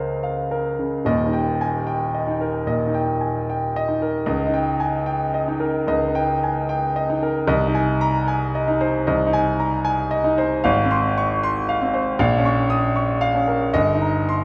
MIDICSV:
0, 0, Header, 1, 2, 480
1, 0, Start_track
1, 0, Tempo, 805369
1, 628, Time_signature, 4, 2, 24, 8
1, 4936, Tempo, 786370
1, 6856, Tempo, 764331
1, 7816, Tempo, 800000
1, 8707, End_track
2, 0, Start_track
2, 0, Title_t, "Grand piano"
2, 0, Program_c, 0, 0
2, 0, Control_c, 0, 64, 127
2, 0, Note_on_c, 0, 37, 65
2, 0, Note_on_c, 0, 49, 60
2, 0, Note_on_c, 0, 70, 68
2, 0, Note_on_c, 0, 72, 53
2, 0, Note_on_c, 0, 77, 65
2, 72, Note_off_c, 0, 70, 0
2, 138, Note_off_c, 0, 77, 0
2, 138, Note_on_c, 0, 77, 62
2, 139, Note_off_c, 0, 72, 0
2, 305, Note_on_c, 0, 70, 69
2, 401, Note_off_c, 0, 77, 0
2, 470, Note_off_c, 0, 49, 0
2, 470, Note_on_c, 0, 49, 55
2, 564, Note_off_c, 0, 70, 0
2, 603, Note_off_c, 0, 37, 0
2, 626, Note_on_c, 0, 27, 78
2, 629, Note_off_c, 0, 49, 0
2, 632, Note_on_c, 0, 75, 81
2, 635, Note_on_c, 0, 39, 78
2, 638, Control_c, 0, 64, 0
2, 749, Control_c, 0, 64, 127
2, 749, Note_on_c, 0, 63, 57
2, 793, Note_on_c, 0, 79, 65
2, 885, Note_off_c, 0, 75, 0
2, 939, Note_off_c, 0, 63, 0
2, 960, Note_on_c, 0, 80, 69
2, 1045, Note_off_c, 0, 79, 0
2, 1113, Note_off_c, 0, 80, 0
2, 1113, Note_on_c, 0, 79, 71
2, 1278, Note_on_c, 0, 75, 60
2, 1352, Note_on_c, 0, 63, 60
2, 1366, Note_off_c, 0, 79, 0
2, 1435, Note_on_c, 0, 70, 65
2, 1530, Note_off_c, 0, 75, 0
2, 1543, Note_off_c, 0, 63, 0
2, 1564, Note_off_c, 0, 27, 0
2, 1568, Note_off_c, 0, 39, 0
2, 1591, Note_on_c, 0, 46, 64
2, 1592, Note_on_c, 0, 75, 75
2, 1689, Note_off_c, 0, 70, 0
2, 1711, Note_on_c, 0, 63, 60
2, 1754, Note_on_c, 0, 79, 63
2, 1783, Note_off_c, 0, 46, 0
2, 1848, Note_off_c, 0, 75, 0
2, 1903, Note_off_c, 0, 63, 0
2, 1912, Note_on_c, 0, 80, 55
2, 2008, Note_off_c, 0, 79, 0
2, 2070, Note_off_c, 0, 80, 0
2, 2083, Note_on_c, 0, 79, 62
2, 2243, Note_on_c, 0, 75, 83
2, 2315, Note_on_c, 0, 63, 62
2, 2329, Note_off_c, 0, 79, 0
2, 2395, Note_on_c, 0, 70, 61
2, 2487, Note_off_c, 0, 75, 0
2, 2499, Note_off_c, 0, 63, 0
2, 2540, Note_on_c, 0, 37, 88
2, 2540, Note_on_c, 0, 75, 78
2, 2547, Note_off_c, 0, 70, 0
2, 2551, Control_c, 0, 64, 0
2, 2644, Control_c, 0, 64, 127
2, 2662, Note_on_c, 0, 63, 58
2, 2704, Note_on_c, 0, 79, 68
2, 2795, Note_off_c, 0, 75, 0
2, 2853, Note_off_c, 0, 63, 0
2, 2860, Note_on_c, 0, 80, 71
2, 2958, Note_off_c, 0, 79, 0
2, 3017, Note_on_c, 0, 79, 73
2, 3021, Note_off_c, 0, 80, 0
2, 3183, Note_on_c, 0, 75, 65
2, 3265, Note_on_c, 0, 63, 70
2, 3276, Note_off_c, 0, 79, 0
2, 3337, Note_on_c, 0, 70, 68
2, 3438, Note_off_c, 0, 75, 0
2, 3456, Note_off_c, 0, 63, 0
2, 3477, Note_off_c, 0, 37, 0
2, 3500, Note_on_c, 0, 37, 82
2, 3504, Note_on_c, 0, 75, 82
2, 3596, Note_off_c, 0, 70, 0
2, 3625, Note_on_c, 0, 63, 66
2, 3666, Note_on_c, 0, 79, 81
2, 3760, Note_off_c, 0, 75, 0
2, 3816, Note_off_c, 0, 63, 0
2, 3835, Note_on_c, 0, 80, 63
2, 3921, Note_off_c, 0, 79, 0
2, 3988, Note_on_c, 0, 79, 79
2, 3989, Note_off_c, 0, 80, 0
2, 4148, Note_on_c, 0, 75, 75
2, 4228, Note_on_c, 0, 63, 70
2, 4240, Note_off_c, 0, 79, 0
2, 4307, Note_on_c, 0, 70, 72
2, 4399, Note_off_c, 0, 75, 0
2, 4415, Note_off_c, 0, 63, 0
2, 4435, Note_off_c, 0, 37, 0
2, 4455, Note_on_c, 0, 36, 100
2, 4460, Note_on_c, 0, 75, 85
2, 4462, Note_off_c, 0, 70, 0
2, 4469, Control_c, 0, 64, 0
2, 4546, Control_c, 0, 64, 127
2, 4575, Note_on_c, 0, 63, 72
2, 4617, Note_on_c, 0, 80, 74
2, 4713, Note_off_c, 0, 75, 0
2, 4766, Note_off_c, 0, 63, 0
2, 4774, Note_on_c, 0, 82, 91
2, 4870, Note_off_c, 0, 80, 0
2, 4933, Note_off_c, 0, 82, 0
2, 4933, Note_on_c, 0, 80, 79
2, 5099, Note_on_c, 0, 75, 72
2, 5177, Note_on_c, 0, 63, 77
2, 5192, Note_off_c, 0, 80, 0
2, 5257, Note_on_c, 0, 72, 81
2, 5354, Note_off_c, 0, 75, 0
2, 5369, Note_off_c, 0, 63, 0
2, 5389, Note_off_c, 0, 36, 0
2, 5417, Note_on_c, 0, 75, 80
2, 5422, Note_on_c, 0, 36, 81
2, 5512, Note_off_c, 0, 72, 0
2, 5537, Note_on_c, 0, 63, 83
2, 5577, Note_on_c, 0, 80, 88
2, 5672, Note_off_c, 0, 75, 0
2, 5728, Note_off_c, 0, 63, 0
2, 5738, Note_on_c, 0, 82, 73
2, 5833, Note_off_c, 0, 80, 0
2, 5891, Note_on_c, 0, 80, 88
2, 5898, Note_off_c, 0, 82, 0
2, 6051, Note_on_c, 0, 75, 85
2, 6131, Note_on_c, 0, 63, 79
2, 6150, Note_off_c, 0, 80, 0
2, 6216, Note_on_c, 0, 72, 81
2, 6310, Note_off_c, 0, 75, 0
2, 6327, Note_off_c, 0, 63, 0
2, 6356, Note_off_c, 0, 36, 0
2, 6374, Note_on_c, 0, 77, 88
2, 6377, Note_off_c, 0, 72, 0
2, 6379, Note_on_c, 0, 32, 107
2, 6388, Control_c, 0, 64, 0
2, 6479, Control_c, 0, 64, 127
2, 6505, Note_on_c, 0, 60, 74
2, 6539, Note_on_c, 0, 84, 82
2, 6631, Note_off_c, 0, 77, 0
2, 6693, Note_off_c, 0, 60, 0
2, 6702, Note_on_c, 0, 85, 82
2, 6793, Note_off_c, 0, 84, 0
2, 6858, Note_off_c, 0, 85, 0
2, 6860, Note_on_c, 0, 84, 90
2, 7019, Note_on_c, 0, 77, 78
2, 7101, Note_on_c, 0, 60, 70
2, 7116, Note_off_c, 0, 84, 0
2, 7177, Note_on_c, 0, 72, 74
2, 7273, Note_off_c, 0, 77, 0
2, 7290, Note_off_c, 0, 60, 0
2, 7311, Note_off_c, 0, 32, 0
2, 7336, Note_off_c, 0, 72, 0
2, 7337, Note_on_c, 0, 34, 104
2, 7338, Note_on_c, 0, 77, 89
2, 7346, Control_c, 0, 64, 0
2, 7430, Control_c, 0, 64, 127
2, 7455, Note_on_c, 0, 61, 80
2, 7501, Note_on_c, 0, 85, 79
2, 7591, Note_off_c, 0, 77, 0
2, 7646, Note_off_c, 0, 61, 0
2, 7654, Note_on_c, 0, 87, 83
2, 7754, Note_off_c, 0, 85, 0
2, 7815, Note_off_c, 0, 87, 0
2, 7816, Note_on_c, 0, 85, 70
2, 7969, Note_on_c, 0, 77, 95
2, 8050, Note_on_c, 0, 61, 66
2, 8066, Note_off_c, 0, 85, 0
2, 8128, Note_on_c, 0, 70, 65
2, 8223, Note_off_c, 0, 77, 0
2, 8241, Note_off_c, 0, 61, 0
2, 8266, Note_off_c, 0, 34, 0
2, 8284, Note_on_c, 0, 75, 99
2, 8286, Note_on_c, 0, 31, 100
2, 8289, Note_off_c, 0, 70, 0
2, 8298, Control_c, 0, 64, 0
2, 8412, Note_on_c, 0, 63, 70
2, 8415, Control_c, 0, 64, 127
2, 8453, Note_on_c, 0, 82, 74
2, 8547, Note_off_c, 0, 75, 0
2, 8607, Note_off_c, 0, 63, 0
2, 8615, Note_on_c, 0, 84, 81
2, 8707, Note_off_c, 0, 31, 0
2, 8707, Note_off_c, 0, 82, 0
2, 8707, Note_off_c, 0, 84, 0
2, 8707, End_track
0, 0, End_of_file